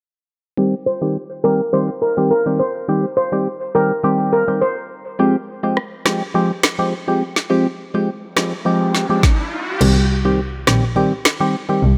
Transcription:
0.57 D#3 G3 C4 G4
0.86 C5
1.01 D#3 G3 C4 G4
1.44 D#3 G3 C4 G4 A#4
1.73 D#3 G3 C4 G4 C5
2.02 A#4
2.17 D#3 G3 C4 G4
2.31 A#4
2.46 D#3 G3 C4 G4
2.59 C5
2.88 D#3 G3 C4 G4
3.17 C5
3.32 D#3 G3 C4 G4
3.75 D#3 G3 C4 G4 A#4
4.03 D#3 G3 C4 G4
4.33 A#4
4.48 D#3 G3 C4 G4
4.62 C5
5.19 F3 G#3 C4 G4
5.63 F3 G#3 C4 G4
5.77 cross-stick
6.05 F3 G#3 C4 G4, cross-stick, snare
6.34 F3 G#3 C4 G4
6.63 cross-stick, snare
6.79 F3 G#3 C4 G4
7.08 F3 G#3 C4 G4
7.36 snare
7.50 F3 G#3 C4 G4, riser
7.94 F3 G#3 C4 G4
8.36 F3 G#3 C4 G4, cross-stick, snare
8.65 F3 G#3 C4 G4
8.95 snare
9.09 F3 G#3 C4 G4
9.23 kick, snare
9.81 C2 D#3 G3 C4 G4, crash
10.25 D#3 G3 C4 G4
10.67 A#1 D#3 G3 C4 G4, cross-stick, snare
10.96 D#3 G3 C4 G4
11.25 cross-stick, snare
11.40 D#3 G3 C4 G4
11.69 D#3 G3 C4 G4
11.83 C2

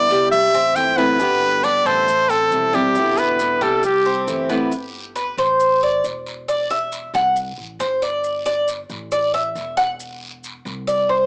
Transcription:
Already playing: D3 G3 B3 E4 D5
0.09 C2 G3, short guiro, maracas
0.31 E5, muted steel-string acoustic guitar stroke, long guiro, maracas
0.53 A1 C4, maracas
0.76 G1 E3 A3 C4 E4 G5, short guiro, maracas
0.97 E3 A3 B3 C4 E4 B4, short guiro, maracas
1.19 B2 D3 G3 B3 G4, long guiro, maracas
1.63 D3 G3 B3 D4 G4 D5, short guiro, maracas
1.85 A1 A3 C5, short guiro, maracas
2.08 muted steel-string acoustic guitar stroke, long guiro, maracas
2.30 C4 A4, maracas
2.51 E1 E3 G3 C4 E4, short guiro, maracas
2.73 G3 C4 D4 E4 G4, short guiro, maracas
2.95 B2 D3 G3 B3 E4 G4, long guiro, maracas
3.17 B3 B4, maracas
3.39 D3 G3 B3 E4, short guiro, maracas
3.61 C2 G3 A4, short guiro, maracas
3.83 G4, muted steel-string acoustic guitar stroke, long guiro, maracas
4.06 C4
4.27 G1 E3 A3 C4 E4, short guiro, maracas
4.49 E3 A3 B3 C4 E4, short guiro, maracas
4.72 long guiro, maracas
5.16 B4, short guiro, maracas
5.37 A1 C5, short guiro, maracas
5.60 long guiro, maracas
5.83 D5
6.04 E1, short guiro, maracas
6.26 short guiro, maracas
6.48 D5, long guiro, maracas
6.70 E5, maracas
6.92 short guiro, maracas
7.14 C2 F#5, short guiro, maracas
7.36 long guiro, maracas
7.58 A1
7.79 G1 C5, short guiro, maracas
8.02 D5, short guiro, maracas
8.24 long guiro, maracas
8.46 D5, maracas
8.68 short guiro, maracas
8.90 A1, short guiro, maracas
9.12 D5, long guiro, maracas
9.34 E5
9.55 E1, short guiro, maracas
9.77 F#5, short guiro, maracas
10.00 long guiro, maracas
10.44 short guiro, maracas
10.65 C2, short guiro, maracas
10.87 D5, long guiro, maracas
11.09 C5

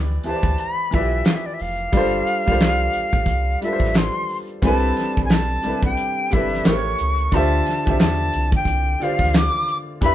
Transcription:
Already playing: D2 E3 E4 G4 B4 D5
0.23 D2 E3 E4 G4 A5, closed hi-hat
0.27 B4 C5
0.35 D5
0.43 D2, kick, closed hi-hat
0.58 B5, closed hi-hat
0.91 B1 E3 E4 F4 B4 E5, kick, closed hi-hat
0.96 D5
1.00 G4
1.25 F5, snare, clap, closed hi-hat
1.35 E5
1.46 D5
1.54 E5
1.59 F1 F5, open hi-hat
1.78 closed hi-hat
1.92 G1 G3 D4 F4 A4, kick, closed hi-hat
1.97 C5
2.27 closed hi-hat
2.46 C2 G3 D4 F4 A4, kick, closed hi-hat
2.52 C5
2.60 snare, clap, closed hi-hat
2.93 A1, closed hi-hat
3.13 A1, kick, closed hi-hat
3.26 C2, kick, closed hi-hat
3.62 G3 D4 F4 A4 E5, closed hi-hat
3.66 B4
3.73 C5
3.79 A1, kick, closed hi-hat
3.84 snare
3.94 C6, snare, clap, closed hi-hat
4.29 open hi-hat
4.48 closed hi-hat
4.62 C2 G3 C4 D4 E4 A4 A5, kick, closed hi-hat
4.67 B4
4.96 snare, closed hi-hat
5.17 B1, kick
5.25 G#5
5.30 A5, snare, clap, closed hi-hat
5.63 B1 C3 G3 D4 E4, closed hi-hat
5.67 A4 B4
5.83 B1 G5, kick
5.97 closed hi-hat
6.30 G1 C3 G3 D4 E4 E5, kick, closed hi-hat
6.35 A4 B4
6.49 closed hi-hat
6.54 snare
6.64 A1 A3 E4 G4 A#4 C#6, snare, clap, closed hi-hat
6.69 C5
6.76 C#5
6.99 C#2, closed hi-hat
7.18 closed hi-hat
7.32 D2 D3 D4 F4 G4 C5 A5, kick, closed hi-hat
7.36 E5
7.66 snare, closed hi-hat
7.85 C2 D3 D4 F4 G4 C5, kick
7.90 E5
7.99 E2 A5, snare, clap, closed hi-hat
8.33 C2, closed hi-hat
8.52 G5, kick, closed hi-hat
8.65 C2, kick, closed hi-hat
9.00 D3 D4 F4 G4 C5 F5, closed hi-hat
9.05 D5
9.12 F5
9.19 D2, kick, closed hi-hat
9.23 snare
9.33 D6, snare, clap, closed hi-hat
9.68 closed hi-hat
10.01 E2 E3 D4 G4 B4 B5, kick, closed hi-hat
10.06 E5

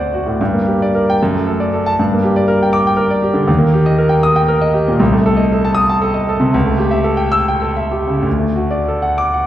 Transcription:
Already playing: D2 C4 F#4 C5 D5 F#5 D6
0.14 F#4
0.26 A2
0.41 G2
0.54 A#3
0.67 G4
0.82 D5
0.95 A#4
1.10 G5
1.23 F#2
1.34 A3
1.47 A4
1.60 D5
1.73 A4
1.86 A5
1.99 G2
2.13 A#3
2.23 G4
2.36 D5
2.48 A#4
2.63 G5
2.73 D6
2.87 G5
2.97 A#4
3.10 D5
3.22 G4
3.34 D3
3.47 D#2
3.59 A#3
3.74 G4
3.86 D#5
3.98 A#4
4.09 G5
4.23 D#6
4.36 G5
4.48 A#4
4.61 D#5
4.74 G4
4.88 A#2
5.00 C2
5.13 A3
5.26 A4
5.37 D#5
5.52 A4
5.65 A5
5.75 D#6
5.90 A5
6.01 A4
6.14 D#5
6.29 A4
6.40 C3
6.54 C#2
6.65 A3
6.78 G4
6.91 E5
7.04 A4
7.17 G5
7.32 E6
7.48 G5
7.62 A4
7.77 E5
7.91 G4
8.07 C#3
8.22 D2
8.39 A3
8.56 F#4
8.71 D5
8.88 A4
9.02 F#5
9.18 D6
9.34 F#5

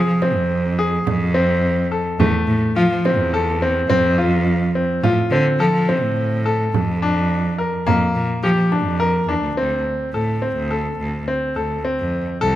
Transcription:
Already playing: G#4
0.07 F3
0.22 C4, frame drum
0.35 F2
0.51 frame drum
0.79 G#4
1.06 F2, frame drum
1.34 C4
1.92 A4
2.19 E2 A3, frame drum
2.47 A2
2.76 F3 F4
2.90 F3
3.05 C4, frame drum
3.19 E2
3.34 A4, frame drum
3.62 C4
3.90 F2 C4, frame drum
4.18 F4
4.75 C4
5.03 A2 F4, frame drum
5.31 D3 C4
5.59 F3 A4
5.73 F3
5.89 C4, frame drum
6.02 A2
6.18 frame drum
6.46 A4
6.73 F2, frame drum
7.02 D4
7.58 A#4
7.87 F2 A#3, frame drum
8.15 A#2, frame drum
8.43 F3 G4
8.57 F3
8.72 D4, frame drum
8.85 F2
9.00 A#4
9.28 E2 D4
9.41 D2
9.56 D2 C4
10.13 A2 A4
10.42 C4
10.56 D2
10.71 A4
10.99 D2
11.28 C4
11.56 D2 A4
11.85 C4
12.00 F2
12.41 C2 A4

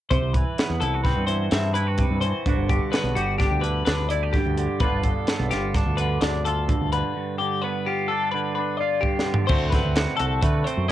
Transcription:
0.11 C2 C3 C5, kick, closed hi-hat
0.22 C2
0.34 E3 B4, kick, closed hi-hat
0.58 B3, snare, closed hi-hat
0.70 E2
0.81 C2 E4 A4, closed hi-hat
0.94 F#4
1.04 C4 B4, kick, snare, closed hi-hat
1.17 G2
1.27 E3 C5, closed hi-hat
1.51 G2 C4 E5, snare, closed hi-hat
1.74 E4 B4, closed hi-hat
1.87 F#4
1.98 C3, kick, closed hi-hat
2.10 G2
2.21 E3 C5, closed hi-hat
2.46 G1 G2 D3 B3 D4 F#4, kick, closed hi-hat
2.57 G1
2.69 D3 G4, kick, closed hi-hat
2.92 B3 B4, snare, closed hi-hat
3.03 B1
3.15 G1 F#4 G4, closed hi-hat
3.38 D4 G4, kick, snare, closed hi-hat
3.50 D2
3.61 D3 B4, closed hi-hat
3.85 D2 D4 B4, snare, closed hi-hat
4.09 E4 D5, closed hi-hat
4.23 G4
4.33 G2 G4, kick, snare, closed hi-hat
4.46 D2
4.58 D3, closed hi-hat
4.80 G1 G2 D3 B3 D4 F4 B4, kick, closed hi-hat
4.92 G1
5.03 D3 A4, kick, closed hi-hat
5.27 B3, snare, closed hi-hat
5.40 B1
5.51 G1 F4 G4, snare, closed hi-hat
5.75 D4 A4, kick, snare, closed hi-hat
5.86 D2
5.97 D3 B4, closed hi-hat
6.21 D2 D4 D5, snare, closed hi-hat
6.45 F4 A4, closed hi-hat
6.68 G2, kick, closed hi-hat
6.81 D2
6.92 D3 B4, closed hi-hat
7.17 G2
7.38 D3 G4
7.62 B3 B4
7.86 F4 G4
8.08 D4 A4
8.31 D3 B4
8.55 D4 B4
8.77 F4 D5
9.01 G2 G4, kick
9.19 snare
9.25 D3
9.34 floor tom
9.47 D2 D3 A3 C4 C5, kick, crash
9.51 F#4
9.70 C4 B4, kick, snare, closed hi-hat
9.85 D2
9.96 F#4, snare, closed hi-hat
10.17 C2 F#4 A4, closed hi-hat
10.42 D3 A3 B4, kick, closed hi-hat
10.64 C4 C5, closed hi-hat
10.77 F#2
10.88 D5

